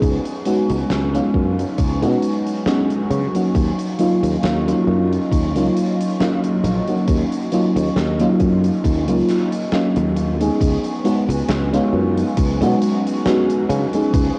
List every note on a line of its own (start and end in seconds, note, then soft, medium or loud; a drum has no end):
0.00 0.17 C#2 medium
0.00 3.51 F#3 medium
0.00 0.41 G#3 medium
0.00 0.41 B3 medium
0.00 0.41 C#4 medium
0.00 0.41 D#4 medium
0.00 0.42 G#4 medium
0.00 3.51 B4 medium
0.00 3.51 G#5 medium
0.00 10.57 C#6 medium
0.00 kick loud
0.00 closed hi-hat medium
0.25 closed hi-hat soft
0.45 1.08 G#3 medium
0.45 1.08 B3 medium
0.45 1.09 C#4 medium
0.45 1.09 D#4 medium
0.45 1.09 F#4 loud
0.45 closed hi-hat medium
0.70 0.83 C#2 medium
0.70 closed hi-hat medium
0.90 1.19 C#2 medium
0.90 snare loud
0.90 closed hi-hat loud
1.14 1.96 G#3 loud
1.14 1.97 B3 medium
1.14 1.97 C#4 medium
1.14 1.97 D#4 medium
1.14 1.97 F4 loud
1.14 closed hi-hat soft
1.34 1.63 F#2 medium
1.34 kick medium
1.59 closed hi-hat soft
1.78 2.04 C#2 medium
1.78 kick loud
1.78 closed hi-hat medium
2.02 2.15 B2 loud
2.02 2.62 G#3 medium
2.02 2.62 B3 medium
2.02 2.62 C#4 medium
2.02 2.62 D#4 medium
2.02 2.62 F#4 loud
2.02 closed hi-hat medium
2.22 closed hi-hat medium
2.47 closed hi-hat soft
2.66 3.29 G#3 medium
2.66 3.29 B3 medium
2.66 3.29 C#4 medium
2.66 3.30 D#4 medium
2.66 3.30 F#4 loud
2.66 snare loud
2.66 closed hi-hat medium
2.90 closed hi-hat soft
3.11 3.26 C#3 medium
3.11 closed hi-hat medium
3.35 3.94 F#3 medium
3.35 3.94 A#3 medium
3.35 3.94 C#4 medium
3.35 3.95 D#4 medium
3.35 3.95 F#4 medium
3.35 closed hi-hat medium
3.55 3.70 D#2 medium
3.55 10.57 F#3 medium
3.55 10.57 D#5 medium
3.55 7.05 F5 medium
3.55 kick loud
3.55 closed hi-hat medium
3.79 closed hi-hat medium
3.99 4.61 F#3 medium
3.99 4.62 A#3 medium
3.99 4.62 C#4 medium
3.99 4.62 D#4 medium
3.99 4.62 F4 loud
3.99 closed hi-hat medium
4.23 4.36 D#2 medium
4.23 closed hi-hat medium
4.43 4.72 D#2 medium
4.43 snare loud
4.43 closed hi-hat medium
4.67 5.50 F#3 medium
4.67 5.50 A#3 medium
4.67 5.50 C#4 medium
4.67 5.50 D#4 medium
4.67 5.50 F4 loud
4.67 closed hi-hat medium
4.87 5.16 F#2 medium
5.12 closed hi-hat medium
5.31 5.55 D#2 medium
5.31 kick loud
5.31 closed hi-hat medium
5.55 5.68 C#2 loud
5.55 6.15 F#3 medium
5.55 6.15 A#3 medium
5.55 6.15 C#4 medium
5.55 6.15 D#4 medium
5.55 6.15 F4 loud
5.55 closed hi-hat medium
5.76 closed hi-hat medium
6.01 closed hi-hat medium
6.19 6.82 F#3 medium
6.19 6.82 A#3 medium
6.19 6.82 C#4 medium
6.19 6.83 D#4 medium
6.19 6.83 F4 loud
6.19 snare loud
6.19 closed hi-hat medium
6.44 closed hi-hat medium
6.64 6.79 A#1 medium
6.64 closed hi-hat medium
6.88 7.47 F#3 medium
6.88 7.47 A#3 medium
6.88 7.47 C#4 medium
6.88 7.48 D#4 medium
6.88 7.48 F#4 medium
6.88 closed hi-hat medium
7.08 7.23 D#2 medium
7.08 kick loud
7.08 closed hi-hat loud
7.32 closed hi-hat medium
7.52 8.14 F#3 medium
7.52 8.15 A#3 medium
7.52 8.15 C#4 medium
7.52 8.15 D#4 medium
7.52 8.15 F4 loud
7.52 closed hi-hat medium
7.76 7.89 D#2 medium
7.76 closed hi-hat medium
7.96 8.25 D#2 medium
7.96 snare loud
7.96 closed hi-hat medium
8.20 9.03 F#3 loud
8.20 9.03 A#3 medium
8.20 9.03 C#4 medium
8.20 9.03 D#4 medium
8.20 9.03 F4 loud
8.20 closed hi-hat medium
8.40 8.69 F#2 medium
8.40 kick medium
8.40 closed hi-hat medium
8.64 closed hi-hat soft
8.84 9.08 D#2 medium
8.84 kick loud
8.84 closed hi-hat loud
9.08 9.21 C#2 loud
9.08 9.67 F#3 medium
9.08 9.68 A#3 medium
9.08 9.68 C#4 medium
9.08 9.68 D#4 medium
9.08 9.68 F4 loud
9.08 closed hi-hat medium
9.29 snare soft
9.29 closed hi-hat medium
9.52 closed hi-hat medium
9.72 10.35 F#3 medium
9.72 10.35 A#3 medium
9.72 10.35 C#4 medium
9.72 10.35 D#4 medium
9.72 10.36 F4 loud
9.72 snare loud
9.72 closed hi-hat medium
9.96 10.49 D#2 loud
9.96 closed hi-hat medium
10.17 closed hi-hat medium
10.40 11.00 G#3 medium
10.40 11.00 B3 medium
10.40 11.00 C#4 medium
10.40 11.01 D#4 medium
10.40 11.01 G#4 medium
10.40 closed hi-hat medium
10.61 10.76 C#2 medium
10.61 14.39 F#3 medium
10.61 14.39 B4 medium
10.61 14.39 G#5 medium
10.61 14.39 C#6 medium
10.61 kick loud
10.61 closed hi-hat loud
10.84 closed hi-hat medium
11.04 11.67 G#3 medium
11.04 11.67 B3 medium
11.04 11.67 C#4 medium
11.04 11.68 D#4 medium
11.04 11.68 F#4 loud
11.04 closed hi-hat medium
11.29 11.41 C#2 medium
11.29 closed hi-hat medium
11.48 11.78 C#2 medium
11.48 snare loud
11.48 closed hi-hat loud
11.73 12.55 G#3 loud
11.73 12.56 B3 medium
11.73 12.56 C#4 medium
11.73 12.56 D#4 medium
11.73 12.56 F4 loud
11.73 closed hi-hat medium
11.93 12.22 F#2 medium
12.17 closed hi-hat medium
12.37 12.62 C#2 medium
12.37 kick loud
12.37 closed hi-hat loud
12.61 12.74 B2 loud
12.61 13.20 G#3 loud
12.61 13.21 B3 medium
12.61 13.21 C#4 medium
12.61 13.21 D#4 medium
12.61 13.21 F#4 loud
12.61 closed hi-hat medium
12.82 closed hi-hat medium
13.07 closed hi-hat medium
13.25 13.88 G#3 medium
13.25 13.88 B3 medium
13.25 13.88 C#4 medium
13.25 13.88 D#4 medium
13.25 13.88 F#4 loud
13.25 snare loud
13.25 closed hi-hat loud
13.50 closed hi-hat medium
13.69 13.85 C#3 medium
13.69 closed hi-hat medium
13.93 14.39 G#3 medium
13.93 14.39 B3 medium
13.93 14.39 C#4 medium
13.93 14.39 D#4 medium
13.93 14.39 G#4 medium
13.93 closed hi-hat medium
14.14 14.29 C#2 loud
14.14 kick loud
14.14 closed hi-hat loud